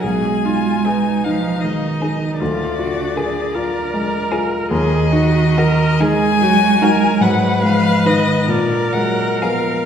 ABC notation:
X:1
M:12/8
L:1/8
Q:3/8=49
K:Ebm
V:1 name="Violin"
a3 f e2 =d4- d z | e3 a3 g f e =d g f |]
V:2 name="Viola"
A F E4 F G A B3 | A G B A G B c3 B3 |]
V:3 name="Violin"
z2 A z2 A z2 A z2 A | z2 G z2 G z2 c z2 A |]
V:4 name="Grand piano"
C,, E c E A, E =D,, F B F A, F | E,, E B E G, E A,, A, [Ec] B,, A, [CB] |]
V:5 name="Cello" clef=bass
A,3 F, E,2 =D,4- D, z | E,3 A,3 G, F, E, =D, G, F, |]